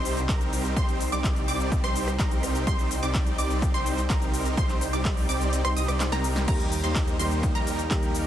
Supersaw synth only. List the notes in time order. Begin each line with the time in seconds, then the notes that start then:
Already playing: G3 C4 D#4 G4 C5
0.29 G3 C4 D#4 G4 A#4
0.77 G3 C4 D#4 G4 C5
1.12 G3 C4 D#4 G4 D5
1.48 G3 C4 D#4 G4 D5
1.84 G3 C4 D#4 G4 C5
2.20 G3 C4 D#4 G4 A#4
2.67 G3 C4 D#4 G4 C5
3.03 G3 C4 D#4 G4 D5
3.39 G3 C4 D#4 G4 D5
3.74 G3 C4 D#4 G4 C5
4.10 G3 C4 D#4 G4 A#4
4.58 G3 C4 D#4 G4 C5
4.93 G3 C4 D#4 G4 D5
5.29 G3 C4 D#4 G4 D5
5.65 G3 C4 D#4 G4 C5
5.77 G3 C4 D#4 G4 D#5
5.89 G3 C4 D#4 G4 D5
6.12 G3 C4 D#4 G4 A#4
6.48 G3 A#3 D#4 G4 A#4
6.84 G3 A#3 D#4 G4 C5
7.19 G3 A#3 D#4 G4 C5
7.55 G3 A#3 D#4 G4 A#4
7.91 G3 A#3 D#4 G4 A#4